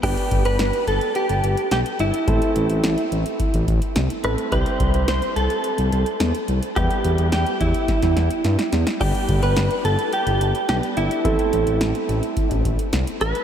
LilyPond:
<<
  \new Staff \with { instrumentName = "Clean electric guitar" } { \time 4/4 \key g \major \tempo 4 = 107 g'8. b'8. a'8 g'4 g'8 e'8~ | e'2~ e'8 r4 b'8 | c''4 c''8 a'2 r8 | g'4 g'8 e'2 r8 |
g'8. b'8. a'8 g'4 g'8 e'8~ | e'2~ e'8 r4 b'8 | }
  \new Staff \with { instrumentName = "Grand piano" } { \time 4/4 \key g \major <b d' g' b'>1 | <a c' e' a'>2.~ <a c' e' a'>8 <a c' e' a'>8 | <g c' e' g'>1 | <g b e' g'>1 |
<g b d' g'>2. <g b d' g'>4 | <a c' e' a'>1 | }
  \new Staff \with { instrumentName = "Analog synth bass" } { \clef bass \time 4/4 \key g \major g,,16 r16 g,,16 g,,16 g,,16 r16 g,,16 r8 g,,16 g,,16 r16 b,,16 r16 g,,16 r16 | a,,16 r16 a,,16 a,,16 a,,16 r16 a,,16 r8 a,,16 a,,16 r16 c,16 r16 a,,16 r16 | c,16 r16 c,16 c,16 c,16 r16 c,16 r8 c,16 c,16 r16 e,16 r16 c,16 r16 | e,16 r16 e,16 e,16 e,16 r16 e,16 r8 e,16 e,16 r16 g,16 r16 e,16 r16 |
g,,16 r16 g,,16 g,,16 g,,16 r16 g,,16 r8 g,,16 g,,16 r16 b,,16 r16 g,,16 r16 | a,,16 r16 a,,16 a,,16 a,,16 r16 a,,16 r8 a,,16 a,,16 r16 c,16 r16 a,,16 r16 | }
  \new DrumStaff \with { instrumentName = "Drums" } \drummode { \time 4/4 <cymc hh bd>16 hh16 <hh bd>16 hh16 <hh sn>16 hh16 hh16 hh16 hh16 hh16 hh16 hh16 <hh sn>16 hh16 hh16 hh16 | <hh bd>16 hh16 hh16 hh16 <hh sn>16 hh16 hh16 hh16 <hh bd>16 hh16 <hh bd>16 hh16 <hh sn>16 hh16 hh16 hh16 | <hh bd>16 hh16 <hh bd>16 hh16 <hh sn>16 hh16 hh16 hh16 hh16 hh16 hh16 hh16 <hh sn>16 hh16 hh16 hh16 | <hh bd>16 hh16 hh16 hh16 <hh sn>16 hh16 <hh bd>16 hh16 <hh bd sn>16 <hh sn>16 <hh sn>16 hh16 <hh sn>16 <hh sn>16 <hh sn>16 <hh sn>16 |
<cymc bd>16 hh16 <hh bd>16 hh16 <hh sn>16 hh16 hh16 hh16 hh16 hh16 hh16 hh16 <hh sn>16 hh16 hh16 hh16 | <hh bd>16 hh16 hh16 hh16 <hh sn>16 hh16 hh16 hh16 <hh bd>16 hh16 <hh bd>16 hh16 <hh sn>16 hh16 hh16 hh16 | }
>>